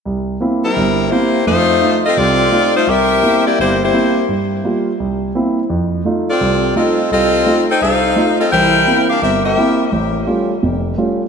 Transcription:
X:1
M:4/4
L:1/8
Q:"Swing" 1/4=170
K:Cmix
V:1 name="Saxophone section"
z3 [G,CEB]3 [B,EGc]2 | [A,_EFc]3 [CFA_e] [CFAd]3 [A,EFc] | [CGBe]3 [B,EGd] [B,EGc] [B,EGc]3 | z8 |
z3 [CFAd]3 [CFA_e]2 | [CFA_e]3 [_EAcg] [EAcf]3 [CFAe] | [EBcg]3 [DGBf] [CGBe] [CGBe]3 | z8 |]
V:2 name="Grand piano"
C,,2 [B,CE] z [G,,,G,,]2 [B,CE] z | [F,,A,]2 [A,_EF] z [C,,C,]2 [A,EF] z | C,,2 [B,CE] z G,,,2 [B,CE] z | G,,2 [G,B,F] z C,,2 [B,CE] z |
F,,2 [A,_EF] z [C,,C,]2 [A,EF] z | C,,2 [A,_EF] z C,,2 [A,EF] z | [C,,E,]2 [B,CE] z G,,,2 [B,CE] z | A,,,2 [G,A,^C^E] z ^E,,,2 [G,A,CE] z |]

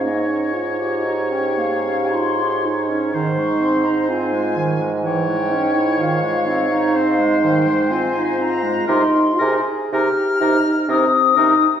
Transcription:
X:1
M:3/4
L:1/16
Q:1/4=62
K:Ab
V:1 name="Flute"
e4- e g f2 c'3 z | b d' c' b a4 g4 | f6 g2 a2 b2 | [K:Cm] c'3 z f'4 e'4 |]
V:2 name="Oboe"
d12 | c6 z2 d4- | d4 c8 | [K:Cm] B2 B2 B2 B2 B2 B2 |]
V:3 name="French horn"
E2 F2 G4 F2 E2 | E4 F2 z2 _F2 E2 | F2 E6 F4 | [K:Cm] E2 A2 G2 E2 C2 E2 |]
V:4 name="Clarinet"
B, D E G E D B, D E G E D | E, A, C E C A, E, A, _F, A, D _F | E, A, C E C A, E, A, C E C A, | [K:Cm] E2 E2 E2 E2 E2 E2 |]
V:5 name="Bassoon" clef=bass
A,,12 | A,,12- | A,,12 | [K:Cm] C,2 C,2 C,2 C,2 C,2 C,2 |]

